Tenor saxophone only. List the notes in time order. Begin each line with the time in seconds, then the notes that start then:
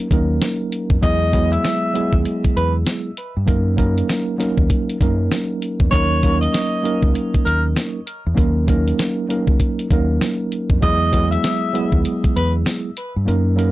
1.03 D#5
1.52 E5
2.57 B4
5.91 C#5
6.41 D#5
7.45 A#4
10.83 D#5
11.31 E5
12.36 B4